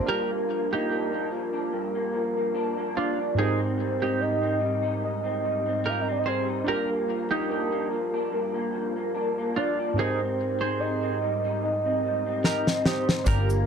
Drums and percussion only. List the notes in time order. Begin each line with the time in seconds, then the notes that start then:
12.44 snare
12.67 snare
12.86 snare
13.09 snare
13.26 kick, closed hi-hat, shaker
13.50 shaker